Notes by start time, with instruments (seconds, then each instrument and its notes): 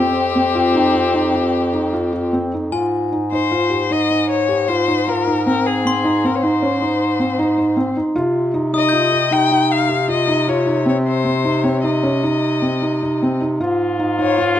Already playing: bass clarinet F2, felt piano C4, french horn C4, violin G4
0.36 felt piano C4
0.55 felt piano F4
0.75 felt piano D#4
0.94 felt piano F4
1.14 felt piano D#4
1.34 felt piano F4
1.73 felt piano D#4
1.93 felt piano F4
2.13 felt piano F4
2.33 felt piano C4
2.54 felt piano D#4
2.72 bass clarinet G#2, felt piano F4, glockenspiel G#5
3.12 felt piano D#4
3.32 felt piano D#4, violin C5
3.51 felt piano F4
3.70 felt piano G4
3.91 felt piano D#4, violin D#5
4.11 felt piano D#4
4.31 violin C#5
4.49 felt piano G4
4.68 felt piano F4, violin C5
4.88 felt piano D#4
5.08 felt piano F4, violin A#4
5.27 felt piano D#4
5.47 felt piano C4, violin A#4
5.67 violin G#4
5.85 felt piano C4, glockenspiel C6
6.04 felt piano D#4
6.24 felt piano C4, violin A#4
6.35 violin C#5
6.42 felt piano D#4, violin C5
6.62 felt piano C#4
6.81 felt piano D#4
7.19 felt piano C4
7.39 felt piano D#4
7.58 felt piano D#4
7.77 felt piano C4
7.97 felt piano D#4
8.16 bass clarinet C3, felt piano F4
8.54 felt piano D#4
8.73 felt piano D#4, violin D#5, glockenspiel D#6
8.89 glockenspiel G6
8.93 felt piano F4
9.12 felt piano G4
9.31 felt piano D#4, violin G5
9.51 felt piano D#4
9.72 violin F5
9.89 felt piano G4
10.08 felt piano F4, violin D#5
10.28 felt piano D#4
10.48 felt piano F4, violin C#5
10.66 felt piano D#4
10.86 felt piano C4, violin C#5
11.07 violin C5
11.25 felt piano C4
11.44 felt piano D#4
11.64 felt piano C4, violin C#5
11.83 felt piano D#4, violin D#5
12.03 felt piano C#4
12.23 felt piano D#4
12.62 felt piano C4
12.82 felt piano D#4
13.03 felt piano D#4
13.22 felt piano C4
13.41 felt piano D#4
13.60 bass clarinet G#2, french horn F4, felt piano F4
13.99 felt piano D#4
14.19 felt piano D#4, violin C#5
14.38 felt piano F4